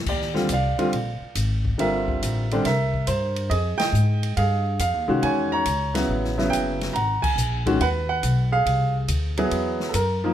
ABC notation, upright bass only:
X:1
M:4/4
L:1/8
Q:"Swing" 1/4=140
K:Fdor
V:1 name="Upright bass" clef=bass
E,,2 C,, z B,,, z A,,,2 | G,,,2 =A,,,2 C,,2 G,,2 | F,, z A,,2 G,,2 (3F,, E,, C,, | _F,,2 _D,,2 =A,,,2 _G,,,2 |
A,,, z B,,,2 E,,2 _C,,2 | C,,2 D,,2 =E,,2 ^F,,2 |]